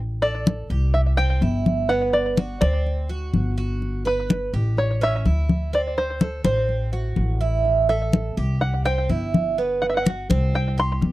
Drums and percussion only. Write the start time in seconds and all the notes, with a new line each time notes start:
0.23 high conga
0.47 high conga
0.71 high conga
0.95 high conga
1.18 high conga
1.42 high conga
1.66 high conga
1.90 high conga
2.13 high conga
2.38 high conga
2.62 high conga
2.87 high conga
3.10 high conga
3.34 high conga
3.58 high conga
3.82 high conga
4.06 high conga
4.30 high conga
4.54 high conga
4.77 high conga
5.02 high conga
5.26 high conga
5.49 high conga
5.73 high conga
5.98 high conga
6.21 high conga
6.44 high conga
6.69 high conga
6.93 high conga
7.16 high conga
7.41 high conga
7.65 high conga
7.89 high conga
8.13 high conga
8.38 high conga
8.62 high conga
8.86 high conga
9.10 high conga
9.34 high conga
9.59 high conga
9.83 high conga
10.06 high conga
10.31 high conga
10.54 high conga
10.78 high conga
11.02 high conga